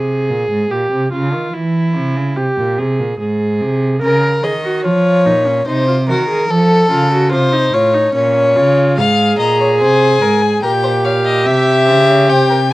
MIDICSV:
0, 0, Header, 1, 5, 480
1, 0, Start_track
1, 0, Key_signature, -5, "minor"
1, 0, Tempo, 827586
1, 894, Time_signature, 3, 2, 24, 8
1, 7384, End_track
2, 0, Start_track
2, 0, Title_t, "Violin"
2, 0, Program_c, 0, 40
2, 5208, Note_on_c, 0, 77, 102
2, 5431, Note_off_c, 0, 77, 0
2, 5447, Note_on_c, 0, 82, 83
2, 5683, Note_off_c, 0, 82, 0
2, 5690, Note_on_c, 0, 80, 104
2, 6159, Note_off_c, 0, 80, 0
2, 6168, Note_on_c, 0, 79, 94
2, 6408, Note_on_c, 0, 77, 83
2, 6417, Note_off_c, 0, 79, 0
2, 6643, Note_off_c, 0, 77, 0
2, 6647, Note_on_c, 0, 76, 123
2, 7132, Note_on_c, 0, 79, 103
2, 7140, Note_off_c, 0, 76, 0
2, 7383, Note_off_c, 0, 79, 0
2, 7384, End_track
3, 0, Start_track
3, 0, Title_t, "Violin"
3, 0, Program_c, 1, 40
3, 2337, Note_on_c, 1, 70, 87
3, 2573, Note_on_c, 1, 75, 76
3, 2582, Note_off_c, 1, 70, 0
3, 2809, Note_off_c, 1, 75, 0
3, 2813, Note_on_c, 1, 73, 94
3, 3283, Note_off_c, 1, 73, 0
3, 3292, Note_on_c, 1, 72, 95
3, 3527, Note_off_c, 1, 72, 0
3, 3535, Note_on_c, 1, 70, 91
3, 3774, Note_on_c, 1, 69, 111
3, 3782, Note_off_c, 1, 70, 0
3, 4244, Note_off_c, 1, 69, 0
3, 4248, Note_on_c, 1, 72, 110
3, 4490, Note_on_c, 1, 73, 100
3, 4498, Note_off_c, 1, 72, 0
3, 4723, Note_off_c, 1, 73, 0
3, 4727, Note_on_c, 1, 73, 103
3, 5198, Note_off_c, 1, 73, 0
3, 5208, Note_on_c, 1, 77, 87
3, 5443, Note_off_c, 1, 77, 0
3, 5448, Note_on_c, 1, 75, 75
3, 5565, Note_off_c, 1, 75, 0
3, 5571, Note_on_c, 1, 73, 71
3, 5617, Note_off_c, 1, 73, 0
3, 5687, Note_on_c, 1, 72, 89
3, 5926, Note_on_c, 1, 70, 81
3, 5935, Note_off_c, 1, 72, 0
3, 6046, Note_on_c, 1, 68, 77
3, 6055, Note_off_c, 1, 70, 0
3, 6162, Note_off_c, 1, 68, 0
3, 6166, Note_on_c, 1, 70, 78
3, 6212, Note_off_c, 1, 70, 0
3, 6285, Note_on_c, 1, 72, 83
3, 6331, Note_off_c, 1, 72, 0
3, 6407, Note_on_c, 1, 73, 71
3, 6453, Note_off_c, 1, 73, 0
3, 6527, Note_on_c, 1, 75, 81
3, 6649, Note_on_c, 1, 76, 85
3, 6658, Note_off_c, 1, 75, 0
3, 6886, Note_off_c, 1, 76, 0
3, 6889, Note_on_c, 1, 72, 68
3, 7009, Note_on_c, 1, 73, 76
3, 7018, Note_off_c, 1, 72, 0
3, 7126, Note_off_c, 1, 73, 0
3, 7130, Note_on_c, 1, 72, 89
3, 7249, Note_off_c, 1, 72, 0
3, 7252, Note_on_c, 1, 70, 69
3, 7299, Note_off_c, 1, 70, 0
3, 7384, End_track
4, 0, Start_track
4, 0, Title_t, "Viola"
4, 0, Program_c, 2, 41
4, 0, Note_on_c, 2, 68, 85
4, 413, Note_on_c, 2, 67, 75
4, 422, Note_off_c, 2, 68, 0
4, 647, Note_off_c, 2, 67, 0
4, 650, Note_on_c, 2, 65, 79
4, 890, Note_on_c, 2, 64, 84
4, 899, Note_off_c, 2, 65, 0
4, 1373, Note_on_c, 2, 67, 82
4, 1381, Note_off_c, 2, 64, 0
4, 1612, Note_on_c, 2, 68, 77
4, 1621, Note_off_c, 2, 67, 0
4, 1849, Note_off_c, 2, 68, 0
4, 1852, Note_on_c, 2, 68, 77
4, 2322, Note_off_c, 2, 68, 0
4, 2331, Note_on_c, 2, 70, 86
4, 2567, Note_off_c, 2, 70, 0
4, 2574, Note_on_c, 2, 68, 68
4, 2620, Note_off_c, 2, 68, 0
4, 2690, Note_on_c, 2, 66, 69
4, 2810, Note_on_c, 2, 65, 75
4, 2819, Note_off_c, 2, 66, 0
4, 3051, Note_on_c, 2, 63, 72
4, 3060, Note_off_c, 2, 65, 0
4, 3171, Note_on_c, 2, 61, 60
4, 3180, Note_off_c, 2, 63, 0
4, 3287, Note_off_c, 2, 61, 0
4, 3290, Note_on_c, 2, 63, 70
4, 3406, Note_off_c, 2, 63, 0
4, 3410, Note_on_c, 2, 65, 64
4, 3456, Note_off_c, 2, 65, 0
4, 3529, Note_on_c, 2, 66, 67
4, 3643, Note_off_c, 2, 66, 0
4, 3647, Note_on_c, 2, 68, 69
4, 3766, Note_off_c, 2, 68, 0
4, 3771, Note_on_c, 2, 69, 85
4, 4005, Note_off_c, 2, 69, 0
4, 4008, Note_on_c, 2, 65, 74
4, 4125, Note_off_c, 2, 65, 0
4, 4128, Note_on_c, 2, 66, 80
4, 4243, Note_off_c, 2, 66, 0
4, 4246, Note_on_c, 2, 65, 81
4, 4367, Note_on_c, 2, 63, 73
4, 4375, Note_off_c, 2, 65, 0
4, 4485, Note_on_c, 2, 65, 83
4, 4494, Note_off_c, 2, 63, 0
4, 4604, Note_on_c, 2, 63, 73
4, 4612, Note_off_c, 2, 65, 0
4, 4717, Note_off_c, 2, 63, 0
4, 4721, Note_on_c, 2, 61, 82
4, 4964, Note_on_c, 2, 65, 78
4, 4973, Note_off_c, 2, 61, 0
4, 5206, Note_on_c, 2, 68, 95
4, 5215, Note_off_c, 2, 65, 0
4, 6166, Note_on_c, 2, 67, 94
4, 6174, Note_off_c, 2, 68, 0
4, 7384, Note_off_c, 2, 67, 0
4, 7384, End_track
5, 0, Start_track
5, 0, Title_t, "Cello"
5, 0, Program_c, 3, 42
5, 0, Note_on_c, 3, 48, 53
5, 173, Note_on_c, 3, 46, 62
5, 182, Note_off_c, 3, 48, 0
5, 290, Note_off_c, 3, 46, 0
5, 294, Note_on_c, 3, 44, 56
5, 409, Note_off_c, 3, 44, 0
5, 413, Note_on_c, 3, 46, 55
5, 531, Note_off_c, 3, 46, 0
5, 534, Note_on_c, 3, 48, 56
5, 648, Note_off_c, 3, 48, 0
5, 652, Note_on_c, 3, 49, 66
5, 772, Note_on_c, 3, 51, 56
5, 781, Note_off_c, 3, 49, 0
5, 888, Note_off_c, 3, 51, 0
5, 892, Note_on_c, 3, 52, 65
5, 1133, Note_on_c, 3, 48, 70
5, 1142, Note_off_c, 3, 52, 0
5, 1252, Note_on_c, 3, 49, 61
5, 1261, Note_off_c, 3, 48, 0
5, 1369, Note_off_c, 3, 49, 0
5, 1373, Note_on_c, 3, 48, 59
5, 1419, Note_off_c, 3, 48, 0
5, 1494, Note_on_c, 3, 46, 62
5, 1613, Note_on_c, 3, 48, 64
5, 1622, Note_off_c, 3, 46, 0
5, 1734, Note_on_c, 3, 46, 62
5, 1743, Note_off_c, 3, 48, 0
5, 1851, Note_off_c, 3, 46, 0
5, 1854, Note_on_c, 3, 44, 64
5, 2094, Note_on_c, 3, 48, 75
5, 2103, Note_off_c, 3, 44, 0
5, 2328, Note_off_c, 3, 48, 0
5, 2331, Note_on_c, 3, 49, 73
5, 2567, Note_off_c, 3, 49, 0
5, 2572, Note_on_c, 3, 51, 69
5, 2812, Note_on_c, 3, 53, 68
5, 2820, Note_off_c, 3, 51, 0
5, 3051, Note_on_c, 3, 46, 69
5, 3060, Note_off_c, 3, 53, 0
5, 3288, Note_off_c, 3, 46, 0
5, 3291, Note_on_c, 3, 48, 75
5, 3529, Note_on_c, 3, 51, 72
5, 3537, Note_off_c, 3, 48, 0
5, 3765, Note_off_c, 3, 51, 0
5, 3769, Note_on_c, 3, 53, 72
5, 4004, Note_off_c, 3, 53, 0
5, 4008, Note_on_c, 3, 49, 78
5, 4247, Note_on_c, 3, 48, 70
5, 4256, Note_off_c, 3, 49, 0
5, 4482, Note_off_c, 3, 48, 0
5, 4486, Note_on_c, 3, 45, 71
5, 4721, Note_off_c, 3, 45, 0
5, 4725, Note_on_c, 3, 46, 79
5, 4965, Note_on_c, 3, 49, 82
5, 4973, Note_off_c, 3, 46, 0
5, 5207, Note_on_c, 3, 44, 76
5, 5215, Note_off_c, 3, 49, 0
5, 5443, Note_off_c, 3, 44, 0
5, 5447, Note_on_c, 3, 46, 74
5, 5689, Note_on_c, 3, 48, 76
5, 5697, Note_off_c, 3, 46, 0
5, 5924, Note_off_c, 3, 48, 0
5, 5927, Note_on_c, 3, 44, 68
5, 6162, Note_off_c, 3, 44, 0
5, 6167, Note_on_c, 3, 46, 78
5, 6647, Note_on_c, 3, 48, 70
5, 6656, Note_off_c, 3, 46, 0
5, 6889, Note_on_c, 3, 49, 74
5, 6897, Note_off_c, 3, 48, 0
5, 7128, Note_on_c, 3, 48, 72
5, 7137, Note_off_c, 3, 49, 0
5, 7383, Note_off_c, 3, 48, 0
5, 7384, End_track
0, 0, End_of_file